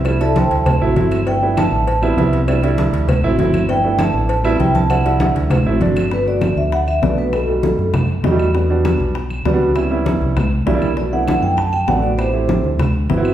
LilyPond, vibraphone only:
\new Staff \with { instrumentName = "Vibraphone" } { \time 4/4 \key g \major \tempo 4 = 198 r8 <a' d'' e'' a''>8 <c'' g'' a'' c'''>4. r4. | g''4 a''4. r4. | r1 | g''4 a''4. r8 g''8 a''8 |
fis''4. r2 r8 | b'8 d''4 e''8 fis''8 e''8 d''8 b'8 | a'2 r2 | r1 |
r1 | d''8 fis''4 g''8 a''8 g''8 fis''8 d''8 | c''2 r2 | }